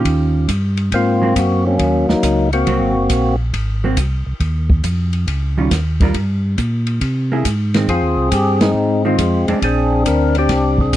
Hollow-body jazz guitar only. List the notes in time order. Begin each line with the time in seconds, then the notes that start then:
Already playing: D#3 C#4 F4 G4
1.22 F#3 A#3 C4
2.67 F#3 A#3 C4
3.84 F#3 A#3 C4
5.58 D#3 G3 C#4 F4
6.02 G3 D4 F4 A#4
7.32 A#3 E4 G#4
7.75 D#3 G#3 C4
9.05 D#3 G#3 C4
9.48 G#3 C4 D4